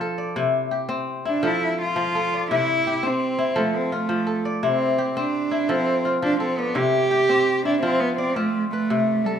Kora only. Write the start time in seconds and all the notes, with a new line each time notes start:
Already playing: F3 C4 D4 F4 G4
0.01 A4
0.18 D5
0.36 C3 E4
0.71 G4
0.89 C4
1.25 E4
1.43 F3 A4
1.96 F3
2.15 A4
2.34 D5
2.51 C3 E4
2.87 G4
3.03 C4
3.39 E4
3.56 F3 A4
3.92 F4
4.09 F3
4.27 A4
4.45 D5
4.63 C3 E4
4.98 G4
5.17 C4
5.51 E4
5.69 F3 A4
6.05 F4
6.22 F3
6.40 A4
6.58 D5
6.75 C3 E4
7.11 G4
7.29 C4
7.65 E4
7.83 F3 F4
8.18 D5
8.36 C4 F4
8.73 B4
8.90 C3
9.26 A4